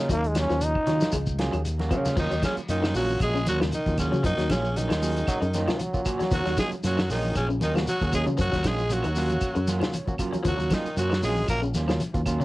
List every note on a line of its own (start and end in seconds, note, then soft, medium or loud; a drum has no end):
0.00 0.25 F#3 medium
0.00 0.13 A#3 soft
0.00 0.25 A#3 medium
0.00 0.26 C#4 medium
0.00 0.26 D#4 loud
0.00 0.12 F4 medium
0.09 0.48 D#2 loud
0.09 0.27 F#3 medium
0.09 0.29 A#3 loud
0.09 kick medium
0.09 closed hi-hat medium
0.09 shekere medium
0.24 0.37 G#3 medium
0.24 closed hi-hat soft
0.35 0.52 F#3 medium
0.35 0.52 A#3 medium
0.35 0.52 C#4 medium
0.35 0.53 F4 medium
0.35 snare medium
0.35 closed hi-hat medium
0.35 high conga medium
0.35 claves medium
0.35 shekere medium
0.39 0.66 C#4 medium
0.49 0.74 D#2 medium
0.49 0.67 F3 medium
0.49 0.70 F#3 medium
0.49 0.70 A#3 medium
0.49 0.70 C#4 medium
0.49 0.71 F4 medium
0.49 snare soft
0.49 shekere soft
0.61 1.13 D#4 loud
0.61 closed hi-hat medium
0.61 shekere medium
0.75 kick medium
0.75 claves medium
0.86 1.01 D#3 medium
0.86 1.01 F#3 medium
0.86 1.05 F#3 medium
0.86 1.16 F#3 medium
0.86 1.16 A#3 medium
0.86 1.01 C#4 medium
0.86 1.16 C#4 medium
0.86 1.00 F4 medium
0.86 1.16 F4 medium
0.86 snare soft
0.86 closed hi-hat soft
0.86 low conga medium
0.86 shekere soft
1.01 1.16 A#3 soft
1.01 1.16 C#4 soft
1.01 1.16 F4 medium
1.01 snare medium
1.01 closed hi-hat soft
1.01 high conga medium
1.01 shekere medium
1.12 1.51 C#2 loud
1.12 1.31 G#3 medium
1.12 kick medium
1.12 closed hi-hat medium
1.12 claves medium
1.12 shekere medium
1.26 kick medium
1.26 shekere medium
1.39 1.56 F#3 medium
1.39 1.61 F#3 medium
1.39 1.61 A#3 medium
1.39 1.61 C#4 medium
1.39 1.56 C#4 medium
1.39 1.56 F4 medium
1.39 1.61 G#4 loud
1.39 muted clean electric guitar stroke medium
1.39 snare medium
1.39 closed hi-hat medium
1.39 high conga medium
1.52 1.93 D#2 medium
1.52 1.71 F#3 medium
1.52 closed hi-hat soft
1.52 claves medium
1.52 shekere soft
1.65 closed hi-hat medium
1.65 shekere medium
1.79 2.07 F#3 loud
1.79 2.07 A#3 medium
1.79 2.07 C#4 medium
1.79 2.07 F#4 loud
1.79 snare soft
1.79 high conga medium
1.91 2.15 C#3 loud
1.91 2.09 F3 medium
1.91 2.05 F#3 medium
1.91 2.05 A#3 medium
1.91 2.05 C#4 medium
1.91 2.04 F4 medium
1.91 kick medium
1.91 closed hi-hat soft
1.91 claves medium
1.91 shekere soft
2.05 2.16 A#3 soft
2.05 2.17 C#4 medium
2.05 2.16 F4 medium
2.05 snare soft
2.05 closed hi-hat soft
2.05 low conga loud
2.05 shekere medium
2.17 2.30 D#2 loud
2.17 2.42 D#3 medium
2.17 2.26 F3 medium
2.17 2.33 F#3 medium
2.17 2.34 A#3 medium
2.17 2.34 C#4 medium
2.17 2.42 D#4 loud
2.17 2.34 F4 medium
2.17 kick medium
2.17 crash medium
2.17 high conga soft
2.17 low conga medium
2.17 shekere loud
2.30 2.42 D#2 medium
2.30 2.49 F#3 medium
2.30 closed hi-hat soft
2.30 shekere soft
2.43 2.57 C#3 medium
2.43 2.59 F#3 medium
2.43 2.59 A#3 medium
2.43 2.60 C#4 medium
2.43 2.56 C#4 medium
2.43 2.60 F4 medium
2.43 kick medium
2.43 snare medium
2.43 closed hi-hat soft
2.43 high conga medium
2.43 claves medium
2.43 shekere medium
2.57 muted fingered electric bass stroke soft
2.57 closed hi-hat soft
2.57 shekere soft
2.69 2.93 F#2 medium
2.69 2.93 D#3 medium
2.69 2.83 F#3 medium
2.69 2.82 A#3 medium
2.69 2.82 C#4 medium
2.69 2.93 D#4 medium
2.69 2.81 F4 medium
2.69 closed hi-hat medium
2.69 shekere medium
2.82 3.00 D#3 medium
2.82 2.94 A#3 soft
2.82 2.94 C#4 soft
2.82 2.94 F4 medium
2.82 snare medium
2.82 claves medium
2.82 shekere soft
2.94 3.19 A#1 medium
2.94 3.11 F#3 medium
2.94 3.31 F#3 medium
2.94 3.20 F#3 medium
2.94 3.31 A#3 medium
2.94 3.12 A#3 medium
2.94 3.31 C#4 medium
2.94 3.12 C#4 medium
2.94 3.31 F4 medium
2.94 3.12 F4 medium
2.94 3.20 F#4 loud
2.94 snare soft
2.94 open hi-hat medium
2.94 shekere medium
3.10 high conga medium
3.10 shekere soft
3.20 3.45 A#1 loud
3.20 3.46 G#3 medium
3.20 3.45 G#4 loud
3.20 kick medium
3.20 closed hi-hat medium
3.20 claves medium
3.20 shekere medium
3.35 3.52 C#3 medium
3.35 shekere soft
3.46 3.71 D#2 medium
3.46 3.63 F#3 medium
3.46 3.60 F#3 medium
3.46 3.63 A#3 medium
3.46 3.63 C#4 medium
3.46 3.64 F4 medium
3.46 3.60 F#4 loud
3.46 snare soft
3.46 closed hi-hat medium
3.46 high conga medium
3.46 shekere medium
3.60 3.78 F3 medium
3.60 3.73 F#3 medium
3.60 3.73 A#3 medium
3.60 3.74 C#4 medium
3.60 3.74 F4 medium
3.60 snare medium
3.60 low conga medium
3.60 claves medium
3.60 shekere soft
3.72 3.98 D#3 medium
3.72 3.97 D#4 medium
3.72 closed hi-hat medium
3.72 high conga medium
3.72 shekere medium
3.86 4.11 D#2 medium
3.86 3.93 F#3 medium
3.86 3.93 A#3 medium
3.86 3.94 C#4 medium
3.86 3.94 F4 medium
3.86 kick medium
3.86 closed hi-hat soft
3.86 high conga medium
3.86 shekere soft
3.98 4.23 C#3 medium
3.98 4.55 F#3 medium
3.98 4.15 F#3 medium
3.98 4.55 A#3 medium
3.98 4.15 A#3 medium
3.98 4.55 C#4 medium
3.98 4.23 C#4 medium
3.98 4.15 C#4 medium
3.98 4.16 F4 medium
3.98 4.55 F#4 medium
3.98 kick medium
3.98 snare soft
3.98 closed hi-hat medium
3.98 claves medium
3.98 shekere medium
4.12 4.23 C#3 medium
4.12 4.20 F#3 medium
4.12 high conga medium
4.12 shekere soft
4.24 4.37 F#2 loud
4.24 4.52 D#3 medium
4.24 4.34 F3 medium
4.24 4.52 D#4 loud
4.24 kick medium
4.24 closed hi-hat medium
4.24 high conga soft
4.24 low conga medium
4.24 shekere medium
4.38 4.49 D#2 medium
4.38 4.56 F#3 medium
4.38 snare soft
4.38 closed hi-hat soft
4.38 shekere soft
4.50 4.88 A#1 medium
4.50 4.79 C#3 medium
4.50 4.67 F#3 medium
4.50 4.67 A#3 medium
4.50 4.79 C#4 medium
4.50 4.67 C#4 medium
4.50 4.68 F4 medium
4.50 kick medium
4.50 snare medium
4.50 closed hi-hat medium
4.50 high conga loud
4.50 claves medium
4.50 shekere medium
4.65 shekere soft
4.76 5.80 D#3 medium
4.76 4.91 F#3 medium
4.76 4.91 A#3 medium
4.76 4.90 C#4 medium
4.76 5.80 D#4 medium
4.76 muted clean electric guitar stroke medium
4.76 closed hi-hat medium
4.76 high conga soft
4.76 shekere loud
4.89 5.25 D#2 medium
4.89 5.07 D#3 medium
4.89 5.02 A#3 soft
4.89 5.02 C#4 soft
4.89 5.02 F4 medium
4.89 snare medium
4.89 closed hi-hat soft
4.89 claves medium
4.89 shekere soft
5.02 5.38 F#3 medium
5.02 5.19 F#3 medium
5.02 5.38 A#3 medium
5.02 5.19 A#3 medium
5.02 5.38 C#4 medium
5.02 5.19 F4 medium
5.02 5.38 G#4 medium
5.02 open hi-hat medium
5.02 shekere medium
5.16 closed hi-hat soft
5.16 shekere soft
5.27 5.39 F#3 loud
5.27 kick medium
5.27 closed hi-hat medium
5.27 claves medium
5.27 shekere loud
5.42 5.66 F#2 medium
5.42 5.60 C#3 medium
5.42 closed hi-hat soft
5.42 shekere soft
5.54 5.82 D#3 loud
5.54 5.70 F#3 medium
5.54 5.71 A#3 medium
5.54 5.71 C#4 medium
5.54 5.71 F4 medium
5.54 snare soft
5.54 closed hi-hat medium
5.54 high conga medium
5.54 shekere medium
5.67 5.86 F3 medium
5.67 5.80 F#3 medium
5.67 5.81 A#3 medium
5.67 5.81 C#4 medium
5.67 5.81 F4 loud
5.67 snare medium
5.67 low conga medium
5.67 claves medium
5.67 shekere soft
5.79 6.83 F#3 medium
5.79 closed hi-hat medium
5.79 high conga medium
5.79 shekere medium
5.93 6.00 F#3 medium
5.93 6.00 A#3 medium
5.93 6.00 C#4 medium
5.93 6.00 F4 loud
5.93 kick medium
5.93 shekere soft
6.05 6.22 F#3 medium
6.05 6.62 F#3 medium
6.05 6.22 A#3 medium
6.05 6.62 A#3 medium
6.05 6.22 C#4 medium
6.05 6.62 C#4 medium
6.05 6.22 F4 medium
6.05 6.62 F#4 medium
6.05 kick medium
6.05 closed hi-hat medium
6.05 high conga soft
6.05 claves medium
6.05 shekere medium
6.19 6.27 F#3 medium
6.19 muted fingered electric bass stroke soft
6.19 snare soft
6.19 closed hi-hat soft
6.19 high conga medium
6.19 shekere soft
6.31 6.45 D#2 loud
6.31 6.41 F3 medium
6.31 6.57 F#3 medium
6.31 6.57 F#4 loud
6.31 kick medium
6.31 closed hi-hat medium
6.31 high conga soft
6.31 low conga medium
6.31 shekere loud
6.45 6.57 D#2 medium
6.45 6.63 F#3 medium
6.45 snare soft
6.45 closed hi-hat soft
6.45 shekere soft
6.57 6.74 F#3 medium
6.57 6.70 G#3 medium
6.57 6.74 A#3 medium
6.57 6.74 C#4 medium
6.57 6.74 F4 medium
6.57 6.70 G#4 loud
6.57 kick medium
6.57 snare medium
6.57 closed hi-hat medium
6.57 high conga loud
6.57 claves medium
6.57 shekere medium
6.72 muted fingered electric bass stroke soft
6.72 closed hi-hat soft
6.72 shekere soft
6.84 7.08 F#2 loud
6.84 7.00 F#3 medium
6.84 7.08 F#3 medium
6.84 7.00 A#3 medium
6.84 7.00 C#4 medium
6.84 7.00 F4 medium
6.84 7.08 F#4 loud
6.84 snare soft
6.84 closed hi-hat medium
6.84 shekere medium
6.97 7.15 D#3 medium
6.97 snare medium
6.97 claves medium
6.97 shekere soft
7.09 7.34 A#1 loud
7.09 7.34 D#3 medium
7.09 7.25 F#3 medium
7.09 7.45 F#3 medium
7.09 7.26 A#3 medium
7.09 7.45 A#3 medium
7.09 7.26 C#4 medium
7.09 7.45 C#4 medium
7.09 7.34 D#4 loud
7.09 7.26 F4 medium
7.09 7.46 G#4 medium
7.09 snare soft
7.09 open hi-hat medium
7.09 shekere medium
7.24 high conga medium
7.24 shekere soft
7.35 7.60 A#1 loud
7.35 7.48 C#3 medium
7.35 7.48 C#4 loud
7.35 kick medium
7.35 closed hi-hat medium
7.35 claves medium
7.35 shekere medium
7.49 7.67 C#3 medium
7.49 shekere soft
7.60 7.85 D#2 medium
7.60 7.75 D#3 medium
7.60 7.77 F#3 medium
7.60 7.77 A#3 medium
7.60 7.78 C#4 medium
7.60 7.74 D#4 medium
7.60 7.78 F4 medium
7.60 closed hi-hat medium
7.60 high conga medium
7.60 shekere medium
7.75 7.93 F3 medium
7.75 7.88 F#3 medium
7.75 7.88 A#3 medium
7.75 7.88 C#4 medium
7.75 7.88 F#4 medium
7.75 snare medium
7.75 low conga medium
7.75 claves medium
7.75 shekere soft
7.87 8.12 F#3 medium
7.87 8.12 F#4 loud
7.87 closed hi-hat medium
7.87 high conga medium
7.87 shekere medium
8.01 8.26 D#2 medium
8.01 8.08 F#3 medium
8.01 8.08 A#3 medium
8.01 8.08 C#4 medium
8.01 8.08 G#4 medium
8.01 kick medium
8.01 closed hi-hat soft
8.01 high conga medium
8.01 shekere soft
8.12 8.29 F#3 medium
8.12 8.70 F#3 medium
8.12 8.26 G#3 medium
8.12 8.29 A#3 medium
8.12 8.70 A#3 medium
8.12 8.29 C#4 medium
8.12 8.70 C#4 medium
8.12 8.30 F4 medium
8.12 8.70 F4 medium
8.12 8.26 G#4 medium
8.12 kick medium
8.12 closed hi-hat medium
8.12 high conga soft
8.12 claves medium
8.12 shekere medium
8.26 8.37 C#3 medium
8.26 8.35 F#3 medium
8.26 high conga medium
8.26 shekere soft
8.38 8.52 F#2 loud
8.38 8.48 F3 medium
8.38 8.69 F#3 medium
8.38 8.69 F#4 loud
8.38 kick medium
8.38 closed hi-hat medium
8.38 high conga soft
8.38 low conga medium
8.38 shekere loud
8.52 8.64 D#2 medium
8.52 8.70 F#3 medium
8.52 kick medium
8.52 snare soft
8.52 closed hi-hat soft
8.52 shekere soft
8.63 9.02 A#1 loud
8.63 8.81 F#3 medium
8.63 8.94 G#3 medium
8.63 8.81 A#3 medium
8.63 8.81 C#4 medium
8.63 8.81 F4 medium
8.63 8.95 G#4 loud
8.63 kick medium
8.63 snare medium
8.63 closed hi-hat medium
8.63 high conga loud
8.63 claves medium
8.63 shekere medium
8.78 shekere soft
8.90 9.06 F#3 medium
8.90 9.95 F#3 medium
8.90 9.07 A#3 medium
8.90 9.07 C#4 medium
8.90 9.07 F4 medium
8.90 9.95 F#4 medium
8.90 closed hi-hat medium
8.90 high conga soft
8.90 shekere medium
9.03 9.40 D#2 medium
9.03 9.22 D#3 medium
9.03 closed hi-hat soft
9.03 claves medium
9.03 shekere soft
9.16 9.32 F#3 medium
9.16 9.52 F#3 medium
9.16 9.33 A#3 medium
9.16 9.52 A#3 medium
9.16 9.33 C#4 medium
9.16 9.52 C#4 medium
9.16 9.33 F4 medium
9.16 9.53 F5 medium
9.16 snare soft
9.16 open hi-hat medium
9.16 shekere medium
9.30 closed hi-hat soft
9.30 high conga medium
9.30 shekere soft
9.41 kick medium
9.41 closed hi-hat medium
9.41 claves medium
9.41 shekere medium
9.55 9.80 F#2 medium
9.55 9.73 C#3 medium
9.55 closed hi-hat soft
9.55 shekere soft
9.67 9.84 F#3 medium
9.67 9.84 A#3 medium
9.67 9.84 C#4 medium
9.67 9.85 F4 medium
9.67 9.92 F#5 medium
9.67 snare soft
9.67 closed hi-hat medium
9.67 high conga medium
9.67 shekere medium
9.80 9.99 F3 medium
9.80 9.95 F#3 medium
9.80 9.95 A#3 medium
9.80 9.95 C#4 medium
9.80 9.95 F4 medium
9.80 snare medium
9.80 low conga medium
9.80 claves medium
9.80 shekere soft
9.93 10.42 C#5 medium
9.93 closed hi-hat medium
9.93 high conga medium
9.93 shekere medium
10.07 10.14 F#3 medium
10.07 10.14 A#3 medium
10.07 10.14 C#4 medium
10.07 10.14 F#4 loud
10.07 kick medium
10.07 high conga medium
10.07 shekere soft
10.18 10.75 F#3 medium
10.18 10.36 F#3 medium
10.18 10.75 A#3 medium
10.18 10.36 A#3 medium
10.18 10.75 C#4 medium
10.18 10.36 C#4 medium
10.18 10.75 F4 loud
10.18 10.36 F4 medium
10.18 kick medium
10.18 closed hi-hat medium
10.18 claves medium
10.18 shekere medium
10.33 10.41 F#3 medium
10.33 muted fingered electric bass stroke soft
10.33 closed hi-hat soft
10.33 high conga medium
10.33 shekere soft
10.43 10.58 D#2 loud
10.43 10.54 F3 medium
10.43 kick medium
10.43 closed hi-hat medium
10.43 high conga soft
10.43 low conga medium
10.43 shekere medium
10.48 10.74 F#3 medium
10.48 10.75 F#4 loud
10.58 10.70 D#2 medium
10.58 10.76 F#3 medium
10.58 closed hi-hat soft
10.58 shekere soft
10.70 10.98 D#3 medium
10.70 10.87 F#3 medium
10.70 10.88 A#3 medium
10.70 10.88 C#4 medium
10.70 10.98 D#4 medium
10.70 10.88 F4 medium
10.70 kick medium
10.70 snare medium
10.70 closed hi-hat medium
10.70 high conga medium
10.70 claves medium
10.70 shekere medium
10.85 muted fingered electric bass stroke soft
10.85 closed hi-hat soft
10.85 shekere soft
10.96 11.21 F#2 medium
10.96 11.13 F#3 medium
10.96 11.22 F#3 medium
10.96 11.14 A#3 medium
10.96 11.14 C#4 medium
10.96 11.14 F4 medium
10.96 11.22 F#4 medium
10.96 closed hi-hat medium
10.96 high conga soft
10.96 shekere medium
11.10 muted clean electric guitar stroke medium
11.10 snare medium
11.10 claves medium
11.10 shekere soft
11.23 11.47 A#1 loud
11.23 11.39 F#3 medium
11.23 11.59 F#3 medium
11.23 11.47 G#3 medium
11.23 11.39 A#3 medium
11.23 11.59 A#3 medium
11.23 11.59 C#4 medium
11.23 11.40 C#4 medium
11.23 11.59 F4 medium
11.23 11.47 G#4 medium
11.23 muted clean electric guitar stroke medium
11.23 open hi-hat medium
11.23 shekere medium
11.37 high conga medium
11.37 shekere soft
11.48 11.73 A#1 medium
11.48 11.61 A#3 medium
11.48 11.61 A#4 loud
11.48 kick medium
11.48 closed hi-hat medium
11.48 claves medium
11.48 shekere medium
11.62 11.80 C#3 medium
11.62 shekere soft
11.74 11.99 D#2 medium
11.74 11.91 F#3 medium
11.74 11.91 A#3 medium
11.74 11.92 C#4 medium
11.74 11.92 F4 medium
11.74 snare soft
11.74 closed hi-hat medium
11.74 high conga medium
11.74 shekere medium
11.88 12.06 F3 medium
11.88 12.02 F#3 loud
11.88 12.02 A#3 medium
11.88 12.01 C#4 medium
11.88 12.02 F4 loud
11.88 snare medium
11.88 low conga medium
11.88 claves medium
11.88 shekere soft
12.00 closed hi-hat medium
12.00 high conga medium
12.00 shekere medium
12.14 12.39 D#2 medium
12.14 12.20 F#3 medium
12.14 12.20 A#3 medium
12.14 12.20 C#4 medium
12.14 12.20 F4 loud
12.14 kick medium
12.14 closed hi-hat soft
12.14 shekere soft
12.26 12.45 F#3 medium
12.26 12.43 F#3 medium
12.26 12.45 A#3 medium
12.26 12.43 A#3 medium
12.26 12.45 C#4 medium
12.26 12.43 C#4 medium
12.26 12.45 F4 loud
12.26 12.43 F4 medium
12.26 kick medium
12.26 closed hi-hat medium
12.26 high conga soft
12.26 claves medium
12.26 shekere medium
12.40 12.45 C#3 loud
12.40 12.45 F#3 medium
12.40 high conga medium
12.40 shekere soft